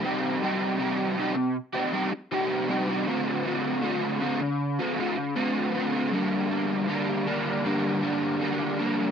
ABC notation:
X:1
M:4/4
L:1/16
Q:1/4=79
K:Gm
V:1 name="Overdriven electric guitar"
[C,G,CEG]2 [G,CEG]2 [C,G,CEG]2 [G,CEG]3 [CEG] [G,CEG]2 [C,G,CEG]2 [G,CEG] [CEG] | [D,A,C^F]2 [D,A,CF]2 [D,A,CF]2 [D,A,CF]3 [A,CF] [D,A,CF]2 [D,A,CF]2 [D,A,CF] [A,CF] | [G,,D,G,B,D]2 [G,B,D]2 [D,G,B,D]2 [G,B,D]2 [G,,D,G,B,D]2 [G,B,D]2 [D,G,B,D]2 [G,B,D]2 |]